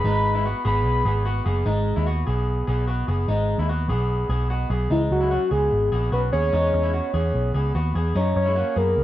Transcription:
0.00 0.62 B5 loud
0.04 0.53 G#1 loud
0.04 0.34 G#3 medium
0.04 0.33 D#4 medium
0.35 0.46 G#3 medium
0.35 0.45 E4 medium
0.45 0.64 B3 medium
0.45 0.64 F#4 medium
0.65 0.85 G#1 medium
0.65 1.04 B3 medium
0.65 1.03 G#4 medium
0.65 1.43 B5 medium
0.85 1.03 B1 loud
1.05 1.40 G#1 medium
1.05 1.25 B3 medium
1.05 1.25 G#4 medium
1.25 1.45 B3 medium
1.25 1.45 F#4 medium
1.46 1.63 F#1 medium
1.46 1.66 B3 medium
1.46 1.66 G#4 medium
1.66 1.92 G#1 loud
1.66 1.95 G#3 medium
1.66 1.95 D#4 medium
1.96 2.23 D#2 medium
1.96 2.07 G#3 medium
1.96 2.06 E4 medium
2.06 2.26 B3 medium
2.06 2.26 F#4 medium
2.27 2.62 B1 medium
2.27 2.66 B3 medium
2.27 2.65 G#4 medium
2.67 3.02 B1 medium
2.67 2.87 B3 medium
2.67 2.87 G#4 medium
2.87 3.08 B3 medium
2.87 3.08 F#4 medium
3.08 3.25 F#1 medium
3.08 3.28 B3 medium
3.08 3.28 G#4 medium
3.28 3.54 G#1 loud
3.28 3.57 G#3 medium
3.28 3.57 D#4 medium
3.58 3.90 D#2 medium
3.58 3.70 G#3 medium
3.58 3.69 E4 medium
3.69 3.89 B3 medium
3.69 3.89 F#4 medium
3.88 4.23 B1 medium
3.88 4.28 B3 medium
3.88 4.27 G#4 medium
4.29 4.64 B1 loud
4.29 4.50 B3 medium
4.29 4.50 G#4 medium
4.50 4.70 B3 medium
4.50 4.70 F#4 medium
4.70 4.87 B1 medium
4.70 4.90 B3 medium
4.70 4.91 G#4 medium
4.90 5.08 C#2 medium
4.90 5.20 G#3 medium
4.90 5.19 D#4 medium
4.90 5.01 E4 medium
5.10 5.37 C#2 medium
5.10 5.49 F#4 medium
5.21 5.31 G#3 medium
5.21 5.31 E4 medium
5.31 5.51 C#4 medium
5.31 5.51 F#4 medium
5.51 5.69 C#2 medium
5.51 5.90 B3 soft
5.51 5.89 G#4 medium
5.72 5.89 G#1 medium
5.92 6.09 A#1 medium
5.92 6.13 B3 medium
5.92 6.12 G#4 medium
6.12 6.30 B1 medium
6.12 6.33 C#4 medium
6.12 6.32 F#4 medium
6.12 6.22 B4 loud
6.33 6.50 D#2 medium
6.33 6.52 B3 medium
6.33 6.53 G#4 medium
6.33 7.50 C#5 loud
6.53 6.70 E2 loud
6.53 6.82 G#3 medium
6.53 6.81 D#4 medium
6.74 6.99 E2 medium
6.83 6.94 G#3 medium
6.83 6.93 E4 medium
6.93 7.14 B3 medium
6.93 7.14 F#4 medium
7.14 7.31 E2 medium
7.14 7.53 B3 medium
7.14 7.52 G#4 medium
7.34 7.51 B1 medium
7.54 7.72 C#2 medium
7.54 7.75 B3 medium
7.54 7.75 G#4 medium
7.75 7.92 D#2 medium
7.75 7.95 B3 medium
7.75 7.95 F#4 medium
7.95 8.12 E2 medium
7.95 8.15 B3 medium
7.95 8.16 G#4 medium
8.15 8.33 F#2 medium
8.15 8.45 F#3 medium
8.15 8.44 D#4 medium
8.15 8.35 C#5 medium
8.36 8.62 F#2 medium
8.36 8.79 C#5 medium
8.46 8.56 G#3 medium
8.46 8.55 E4 medium
8.56 8.77 A#3 medium
8.56 8.76 F#4 medium
8.76 8.94 F#2 medium
8.76 9.04 B3 medium
8.76 9.04 G#4 medium
8.76 9.04 A#4 medium
8.97 9.04 C#2 medium

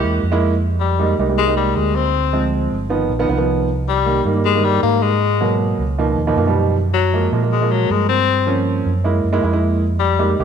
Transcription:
0.00 0.21 E2 medium
0.00 0.20 G#3 medium
0.00 0.20 A#3 medium
0.00 0.20 E4 medium
0.23 1.12 F2 medium
0.32 0.52 G#3 medium
0.32 0.52 A#3 medium
0.32 0.52 E4 loud
0.80 1.16 G3 medium
0.99 1.12 G3 medium
0.99 1.13 G#3 medium
0.99 1.13 A#3 medium
0.99 1.13 D#4 medium
1.18 1.72 C2 medium
1.18 1.25 G3 medium
1.18 1.25 G#3 medium
1.18 1.25 A#3 medium
1.18 1.26 D#4 medium
1.29 1.42 G3 medium
1.29 1.42 G#3 medium
1.29 1.42 A#3 medium
1.29 1.42 D#4 medium
1.38 1.56 G#3 medium
1.47 2.01 G3 medium
1.47 2.01 G#3 medium
1.47 2.01 A#3 medium
1.47 2.01 D#4 medium
1.57 1.77 G3 medium
1.75 2.66 D2 medium
1.75 1.97 G#3 medium
1.95 2.53 C4 loud
2.33 2.73 F3 medium
2.33 2.73 G#3 medium
2.33 2.74 C4 medium
2.72 3.07 G1 medium
2.90 3.10 D#3 medium
2.90 3.11 F3 medium
2.90 3.11 B3 medium
3.09 3.28 A#1 medium
3.19 3.26 D#3 medium
3.19 3.26 F3 medium
3.19 3.26 B3 loud
3.29 4.19 C2 medium
3.29 3.36 D#3 medium
3.29 3.36 F3 medium
3.29 3.36 B3 medium
3.38 3.67 D#3 medium
3.38 3.67 F3 medium
3.38 3.67 B3 medium
3.88 4.23 G3 medium
4.06 4.19 D#3 medium
4.06 4.20 G3 medium
4.06 4.19 A#3 medium
4.25 4.79 G2 medium
4.25 4.32 D#3 medium
4.25 4.32 G3 medium
4.25 4.32 A#3 medium
4.35 4.48 D#3 medium
4.35 4.48 G3 medium
4.35 4.49 A#3 medium
4.45 4.66 G#3 medium
4.55 5.08 D#3 medium
4.55 5.08 G3 medium
4.55 5.08 A#3 medium
4.64 4.82 G3 medium
4.83 5.73 G#2 medium
4.83 5.04 A#3 loud
5.02 5.60 G#3 medium
5.41 5.81 B2 medium
5.41 5.81 F#3 medium
5.41 5.81 A#3 medium
5.78 6.14 C#2 medium
5.98 6.18 B2 medium
5.98 6.19 D#3 medium
5.98 6.19 F3 medium
5.98 6.19 A#3 medium
6.17 6.35 D#2 medium
6.27 6.34 B2 medium
6.27 6.34 D#3 medium
6.27 6.34 F3 medium
6.27 6.34 A#3 medium
6.36 7.26 F#2 medium
6.36 6.44 B2 medium
6.36 6.44 D#3 medium
6.36 6.44 F3 medium
6.36 6.44 A#3 medium
6.47 6.75 B2 medium
6.47 6.75 D#3 medium
6.47 6.76 F3 medium
6.47 6.76 G3 medium
6.94 7.30 F#3 medium
7.13 7.27 F3 medium
7.13 7.27 G#3 medium
7.13 7.27 A#3 medium
7.32 7.86 A#2 loud
7.32 7.39 F3 medium
7.32 7.39 G#3 medium
7.32 7.39 A#3 medium
7.42 7.55 F3 medium
7.42 7.56 G#3 medium
7.42 7.56 A#3 medium
7.52 7.73 G#3 medium
7.61 8.15 F3 medium
7.61 8.15 G#3 medium
7.61 8.15 A#3 medium
7.71 7.93 F#3 medium
7.90 8.80 G2 medium
7.90 8.08 G#3 medium
8.09 8.63 C4 loud
8.46 8.87 F3 medium
8.46 8.87 A#3 medium
8.46 8.88 C#4 medium
8.85 9.21 F#2 medium
9.04 9.25 G#3 medium
9.04 9.25 A#3 medium
9.04 9.25 E4 medium
9.24 9.42 F#2 medium
9.33 9.40 G#3 loud
9.33 9.40 A#3 medium
9.33 9.40 E4 loud
9.43 10.33 F2 medium
9.43 9.50 G#3 medium
9.43 9.50 A#3 medium
9.43 9.50 E4 medium
9.53 9.82 G#3 medium
9.53 9.82 A#3 medium
9.53 9.82 E4 medium
10.00 10.36 G3 medium
10.19 10.33 G#3 medium
10.19 10.33 A#3 medium
10.19 10.33 D#4 medium
10.19 10.33 G4 medium
10.39 10.44 C2 medium
10.39 10.44 G#3 medium
10.39 10.44 A#3 medium
10.39 10.44 D#4 medium
10.39 10.44 G4 medium

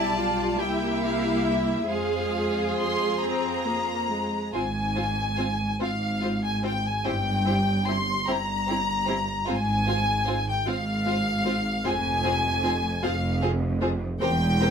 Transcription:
0.00 0.57 B1 medium
0.00 0.57 G3 soft
0.00 0.17 E4 medium
0.00 0.17 E4 soft
0.00 0.55 G4 medium
0.00 0.57 D5 medium
0.00 0.57 A5 medium
0.18 0.59 F4 medium
0.18 0.58 F4 medium
0.59 1.89 C2 medium
0.59 1.88 A#3 medium
0.59 1.88 E4 medium
0.59 1.89 E4 medium
0.59 1.88 G4 medium
0.59 1.89 E5 soft
0.59 1.02 G5 medium
1.01 1.44 F5 medium
1.44 1.88 E5 medium
1.88 4.30 F2 medium
1.88 3.10 G#3 soft
1.88 4.34 F4 medium
1.88 3.10 G#4 soft
1.88 3.84 G#4 medium
1.88 4.29 C5 medium
1.88 2.77 F5 medium
2.77 3.18 C6 medium
3.22 3.63 C4 medium
3.22 4.53 A#5 medium
3.66 4.10 A#3 medium
4.10 4.53 G#3 soft
4.53 5.66 G#1 medium
4.53 5.66 G#2 medium
4.53 4.62 C4 soft
4.53 4.62 F4 medium
4.53 4.62 F4 soft
4.53 4.62 C5 medium
4.53 5.78 G#5 medium
4.95 5.04 C4 soft
4.95 5.03 F4 soft
4.95 5.04 F4 soft
4.95 5.04 C5 soft
5.37 5.46 C4 soft
5.37 5.45 F4 soft
5.37 5.46 F4 soft
5.37 5.46 C5 soft
5.79 6.91 G#1 medium
5.79 6.91 G#2 medium
5.79 5.88 C4 soft
5.79 5.88 F4 soft
5.79 5.88 F4 medium
5.79 5.87 C5 soft
5.79 6.42 F5 medium
6.22 6.31 C4 soft
6.22 6.30 F4 soft
6.22 6.31 F4 soft
6.22 6.30 C5 soft
6.44 6.64 G#5 medium
6.63 6.71 C4 soft
6.63 6.71 F4 soft
6.63 6.72 F4 soft
6.63 6.72 C5 soft
6.63 6.84 G5 medium
6.86 7.06 G#5 medium
7.04 8.14 G1 medium
7.04 8.14 G2 medium
7.04 7.13 C4 soft
7.04 7.13 E4 soft
7.04 7.12 G4 medium
7.04 7.13 C5 medium
7.04 7.88 G5 medium
7.45 7.54 C4 soft
7.45 7.53 E4 soft
7.45 7.54 G4 soft
7.45 7.54 C5 soft
7.86 7.95 C4 soft
7.86 7.95 E4 soft
7.86 7.94 G4 soft
7.86 7.94 C5 soft
7.86 8.29 C6 medium
8.26 9.34 G1 medium
8.26 9.34 G2 medium
8.26 8.36 C4 medium
8.26 8.36 E4 soft
8.26 8.34 G4 soft
8.26 8.35 C5 soft
8.26 9.48 A#5 medium
8.67 8.77 C4 soft
8.67 8.77 E4 soft
8.67 8.75 G4 soft
8.67 8.75 C5 soft
9.06 9.16 C4 soft
9.06 9.15 E4 soft
9.06 9.14 G4 soft
9.06 9.14 C5 soft
9.46 10.54 G#1 medium
9.46 10.53 G#2 medium
9.46 9.56 C4 medium
9.46 9.54 F4 medium
9.46 9.55 F4 soft
9.46 9.54 C5 medium
9.46 10.47 G#5 medium
9.87 9.95 C4 medium
9.87 9.96 F4 soft
9.87 9.96 C5 soft
10.26 10.35 C4 medium
10.26 10.34 F4 soft
10.26 10.36 F4 soft
10.26 10.34 C5 soft
10.49 10.68 G5 medium
10.66 11.72 G#1 medium
10.66 11.71 G#2 medium
10.66 10.75 C4 medium
10.66 10.75 F4 soft
10.66 10.75 F4 medium
10.66 10.74 C5 soft
10.66 11.86 F5 medium
11.06 11.14 C4 soft
11.06 11.14 F4 soft
11.06 11.15 F4 soft
11.06 11.15 C5 soft
11.45 11.53 C4 soft
11.45 11.53 F4 soft
11.45 11.54 F4 soft
11.45 11.54 C5 soft
11.85 12.89 F1 medium
11.85 12.89 F2 medium
11.85 11.93 C4 soft
11.85 11.93 F4 medium
11.85 11.93 G#4 medium
11.85 11.93 C5 medium
11.85 13.03 G#5 medium
12.24 12.32 C4 medium
12.24 12.32 F4 medium
12.24 12.33 G#4 soft
12.24 12.33 C5 medium
12.63 12.71 C4 medium
12.63 12.71 F4 medium
12.63 12.72 G#4 soft
12.63 12.72 C5 medium
13.03 14.07 F1 medium
13.03 14.07 F2 medium
13.03 13.11 C4 medium
13.03 13.11 F4 medium
13.03 13.12 G#4 medium
13.03 13.12 C5 medium
13.03 13.43 F5 medium
13.42 13.50 C4 medium
13.42 13.50 F4 medium
13.42 13.50 G#4 medium
13.42 13.51 C5 medium
13.81 13.89 C4 medium
13.81 13.89 F4 medium
13.81 13.90 G#4 medium
13.81 13.89 C5 soft
14.20 14.70 E1 medium
14.20 14.70 E2 medium
14.20 14.29 C4 medium
14.20 14.29 G4 medium
14.20 14.29 A#4 medium
14.20 14.29 C5 medium
14.20 14.70 G5 loud
14.61 14.69 C4 medium
14.61 14.69 G4 medium
14.61 14.69 A#4 medium
14.61 14.69 C5 medium

